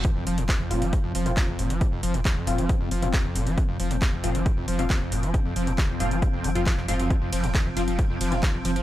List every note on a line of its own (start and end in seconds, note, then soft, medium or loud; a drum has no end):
0.05 0.11 F2 medium
0.05 8.83 F3 medium
0.05 8.83 C4 medium
0.05 kick loud
0.05 closed hi-hat medium
0.16 0.26 F1 medium
0.16 0.25 F2 loud
0.27 0.37 F1 loud
0.27 0.39 F3 loud
0.27 open hi-hat loud
0.38 0.49 F1 medium
0.38 0.44 G#2 loud
0.38 closed hi-hat medium
0.49 0.61 D#2 medium
0.49 kick loud
0.49 clap loud
0.49 closed hi-hat medium
0.60 0.70 F1 medium
0.60 0.72 F2 loud
0.71 0.81 F1 loud
0.71 0.83 A#2 medium
0.71 0.90 F3 medium
0.71 0.90 C4 medium
0.71 0.90 F4 medium
0.71 open hi-hat loud
0.82 0.93 F1 medium
0.82 0.94 F3 medium
0.82 closed hi-hat medium
0.93 0.99 F2 medium
0.93 kick loud
0.93 closed hi-hat medium
1.04 1.14 F1 medium
1.04 1.13 F2 loud
1.15 1.25 F1 loud
1.15 1.28 F3 loud
1.15 open hi-hat loud
1.26 1.37 F1 medium
1.26 1.32 G#2 loud
1.26 1.45 F3 medium
1.26 1.45 C4 medium
1.26 1.45 F4 medium
1.26 closed hi-hat medium
1.37 1.50 D#2 medium
1.37 kick loud
1.37 clap loud
1.37 closed hi-hat medium
1.48 1.58 F1 medium
1.48 1.61 F2 loud
1.59 1.69 F1 loud
1.59 1.72 A#2 medium
1.59 open hi-hat loud
1.70 1.81 F1 medium
1.70 1.83 F3 medium
1.70 closed hi-hat medium
1.81 1.87 F2 medium
1.81 kick loud
1.81 closed hi-hat medium
1.92 2.02 F1 medium
1.92 2.01 F2 loud
2.03 2.13 F1 loud
2.03 2.16 F3 loud
2.03 open hi-hat loud
2.14 2.25 F1 medium
2.14 2.20 G#2 loud
2.14 closed hi-hat medium
2.25 2.38 D#2 medium
2.25 kick loud
2.25 clap loud
2.25 closed hi-hat medium
2.36 2.47 F1 medium
2.36 2.49 F2 loud
2.47 2.58 F1 loud
2.47 2.60 A#2 medium
2.47 2.67 F3 medium
2.47 2.67 C4 medium
2.47 2.67 F4 medium
2.47 open hi-hat loud
2.58 2.69 F1 medium
2.58 2.71 F3 medium
2.58 closed hi-hat medium
2.69 2.75 F2 medium
2.69 kick loud
2.69 closed hi-hat medium
2.80 2.91 F1 medium
2.80 2.90 F2 loud
2.91 3.02 F1 loud
2.91 3.04 F3 loud
2.91 open hi-hat loud
3.02 3.13 F1 medium
3.02 3.09 G#2 loud
3.02 3.22 F3 medium
3.02 3.22 C4 medium
3.02 3.22 F4 medium
3.02 closed hi-hat medium
3.13 3.26 D#2 medium
3.13 kick loud
3.13 clap loud
3.13 closed hi-hat medium
3.25 3.35 F1 medium
3.25 3.37 F2 loud
3.35 3.46 F1 loud
3.35 3.48 A#2 medium
3.35 open hi-hat loud
3.47 3.57 F1 medium
3.47 3.59 F3 medium
3.47 closed hi-hat medium
3.58 3.64 F2 medium
3.58 kick loud
3.58 closed hi-hat medium
3.69 3.79 F1 medium
3.69 3.78 F2 loud
3.80 3.90 F1 loud
3.80 3.92 F3 loud
3.80 open hi-hat loud
3.91 4.02 F1 medium
3.91 3.97 G#2 loud
3.91 closed hi-hat medium
4.02 4.14 D#2 medium
4.02 kick loud
4.02 clap loud
4.02 closed hi-hat medium
4.13 4.23 F1 medium
4.13 4.25 F2 loud
4.24 4.34 F1 loud
4.24 4.37 A#2 medium
4.24 4.43 F3 medium
4.24 4.43 C4 medium
4.24 4.43 F4 medium
4.24 open hi-hat loud
4.35 4.46 F1 medium
4.35 4.48 F3 medium
4.35 closed hi-hat medium
4.46 4.52 F2 medium
4.46 kick loud
4.46 closed hi-hat medium
4.57 4.67 F1 medium
4.57 4.66 F2 loud
4.68 4.78 F1 loud
4.68 4.81 F3 loud
4.68 open hi-hat loud
4.79 4.90 F1 medium
4.79 4.85 G#2 loud
4.79 4.98 F3 medium
4.79 4.98 C4 medium
4.79 4.98 F4 medium
4.79 closed hi-hat medium
4.90 5.03 D#2 medium
4.90 kick loud
4.90 clap loud
4.90 closed hi-hat medium
5.01 5.11 F1 medium
5.01 5.14 F2 loud
5.12 5.23 F1 loud
5.12 5.25 A#2 medium
5.12 open hi-hat loud
5.23 5.34 F1 medium
5.23 5.36 F3 medium
5.23 closed hi-hat medium
5.34 5.40 F2 medium
5.34 kick loud
5.34 closed hi-hat medium
5.45 5.56 F1 medium
5.45 5.54 F2 loud
5.56 5.67 F1 loud
5.56 5.69 F3 loud
5.56 open hi-hat loud
5.67 5.78 F1 medium
5.67 5.73 G#2 loud
5.67 closed hi-hat medium
5.78 5.91 D#2 medium
5.78 kick loud
5.78 clap loud
5.78 closed hi-hat medium
5.89 6.00 F1 medium
5.89 6.02 F2 loud
6.00 6.11 F1 loud
6.00 6.13 A#2 medium
6.00 6.20 F3 medium
6.00 6.20 C4 medium
6.00 6.20 F4 medium
6.00 open hi-hat loud
6.11 6.22 F1 medium
6.11 6.24 F3 medium
6.11 closed hi-hat medium
6.22 6.28 F2 medium
6.22 kick loud
6.22 closed hi-hat medium
6.33 6.44 F1 medium
6.33 6.46 F2 loud
6.44 6.55 F1 loud
6.44 6.50 F3 loud
6.44 open hi-hat loud
6.55 6.66 F1 medium
6.55 6.64 F2 loud
6.55 6.75 F3 medium
6.55 6.75 C4 medium
6.55 6.75 F4 medium
6.55 closed hi-hat medium
6.66 6.73 F2 medium
6.66 kick loud
6.66 clap loud
6.66 closed hi-hat medium
6.77 6.88 F1 medium
6.77 6.87 F2 medium
6.77 clap soft
6.88 6.99 F1 loud
6.88 6.95 G#2 loud
6.88 7.74 F3 medium
6.88 7.74 C4 medium
6.88 7.74 F4 loud
6.88 open hi-hat loud
7.00 7.10 F1 medium
7.00 7.12 F#2 medium
7.00 closed hi-hat medium
7.10 7.17 F2 medium
7.10 kick loud
7.10 closed hi-hat medium
7.22 7.32 F1 medium
7.22 7.31 F2 loud
7.32 7.43 F1 loud
7.32 7.45 F3 loud
7.32 open hi-hat loud
7.32 ride medium
7.44 7.54 F1 medium
7.44 7.50 G#2 loud
7.44 closed hi-hat medium
7.55 7.67 D#2 medium
7.55 kick loud
7.55 clap loud
7.55 closed hi-hat medium
7.66 7.76 F1 medium
7.66 7.69 F2 loud
7.77 7.87 F1 loud
7.77 7.83 F3 medium
7.77 7.96 F3 medium
7.77 7.96 C4 medium
7.77 7.96 F4 medium
7.77 open hi-hat loud
7.77 ride medium
7.88 7.99 F1 medium
7.88 8.00 F3 medium
7.88 closed hi-hat medium
7.99 8.05 F2 medium
7.99 kick loud
7.99 closed hi-hat medium
8.10 8.20 F1 medium
8.10 8.19 F2 loud
8.21 8.31 F1 loud
8.21 8.33 F3 loud
8.21 open hi-hat loud
8.21 ride medium
8.32 8.43 F1 medium
8.32 8.38 G#2 loud
8.32 8.51 F3 medium
8.32 8.51 C4 medium
8.32 8.51 F4 medium
8.32 closed hi-hat medium
8.43 8.55 D#2 medium
8.43 kick loud
8.43 clap loud
8.43 closed hi-hat medium
8.54 8.64 F1 medium
8.54 8.58 F2 loud
8.65 8.75 F1 loud
8.65 8.71 F3 medium
8.65 open hi-hat loud
8.65 ride medium
8.76 8.83 F1 medium
8.76 8.83 F3 medium
8.76 closed hi-hat medium